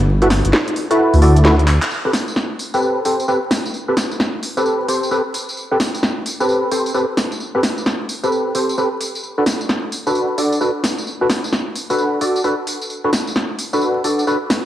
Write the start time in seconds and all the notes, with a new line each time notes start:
Already playing: G1
0.22 E4 F#4 A4 B4, closed hi-hat
0.30 snare, open hi-hat
0.45 G1, closed hi-hat
0.53 snare
0.68 closed hi-hat
0.76 open hi-hat
0.91 E4 F#4 A4 B4, closed hi-hat
1.13 D2, open hi-hat
1.22 E4 F#4 A4 D5, open hi-hat
1.36 closed hi-hat
1.45 E4 F#4 A4 B4, snare
1.59 closed hi-hat
1.68 clap, open hi-hat
1.82 clap, closed hi-hat
1.91 tambourine
2.05 C4 G4 A4 B4
2.13 snare, open hi-hat, tambourine
2.28 tambourine
2.36 snare, tambourine
2.59 open hi-hat, tambourine
2.74 C4 G4 A4 B4, tambourine
2.82 tambourine
3.05 C4 G4 A4 C5, open hi-hat, tambourine
3.20 tambourine
3.28 C4 G4 A4 B4, tambourine
3.51 snare, open hi-hat, tambourine
3.65 tambourine
3.74 tambourine
3.88 C4 G4 A4 B4
3.97 snare, open hi-hat, tambourine
4.11 tambourine
4.20 snare, tambourine
4.43 open hi-hat, tambourine
4.57 C4 G4 A4 B4, tambourine
4.66 tambourine
4.88 C4 G4 A4 C5, open hi-hat, tambourine
5.03 tambourine
5.11 C4 G4 A4 B4, tambourine
5.34 open hi-hat, tambourine
5.49 tambourine
5.57 tambourine
5.71 C4 G4 A4 B4
5.80 snare, open hi-hat, tambourine
5.95 tambourine
6.03 snare, tambourine
6.26 open hi-hat, tambourine
6.40 C4 G4 A4 B4, tambourine
6.49 tambourine
6.71 C4 G4 A4 C5, open hi-hat, tambourine
6.86 tambourine
6.94 C4 G4 A4 B4, tambourine
7.17 snare, open hi-hat, tambourine
7.32 tambourine
7.40 tambourine
7.55 C4 G4 A4 B4
7.63 snare, open hi-hat, tambourine
7.78 tambourine
7.86 snare, tambourine
8.09 open hi-hat, tambourine
8.23 C4 G4 A4 B4, tambourine
8.32 tambourine
8.55 C4 G4 A4 C5, open hi-hat, tambourine
8.69 tambourine
8.78 C4 G4 A4 B4, tambourine
9.01 open hi-hat, tambourine
9.15 tambourine
9.23 tambourine
9.38 D4 F#4 A4 B4
9.46 snare, open hi-hat, tambourine
9.61 tambourine
9.69 snare, tambourine
9.92 open hi-hat, tambourine
10.07 D4 F#4 A4 B4, tambourine
10.15 tambourine
10.38 D4 F#4 A4 D5, open hi-hat, tambourine
10.53 tambourine
10.61 D4 F#4 A4 B4, tambourine
10.84 snare, open hi-hat, tambourine
10.98 tambourine
11.07 tambourine
11.21 D4 F#4 A4 B4
11.30 snare, open hi-hat, tambourine
11.44 tambourine
11.53 snare, tambourine
11.75 open hi-hat, tambourine
11.90 D4 F#4 A4 B4, tambourine
11.98 tambourine
12.21 D4 F#4 A4 D5, open hi-hat, tambourine
12.36 tambourine
12.44 D4 F#4 A4 B4, tambourine
12.67 open hi-hat, tambourine
12.82 tambourine
12.90 tambourine
13.04 D4 F#4 A4 B4
13.13 snare, open hi-hat, tambourine
13.27 tambourine
13.36 snare, tambourine
13.59 open hi-hat, tambourine
13.73 D4 F#4 A4 B4, tambourine
13.81 tambourine
14.04 D4 F#4 A4 D5, open hi-hat, tambourine
14.19 tambourine
14.27 D4 F#4 A4 B4, tambourine
14.50 snare, open hi-hat, tambourine